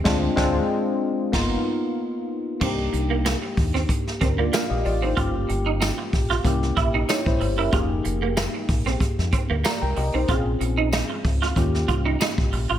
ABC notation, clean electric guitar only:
X:1
M:4/4
L:1/16
Q:"Swing 16ths" 1/4=94
K:Cm
V:1 name="Clean electric guitar"
z16 | C z2 B, B, z2 C z2 C B, B, z2 C | F z2 E E z2 F z2 =E _E E z2 =E | F z2 B, B, z2 C z2 C B, B, z2 C |
F z2 E E z2 F z2 F E E z2 F |]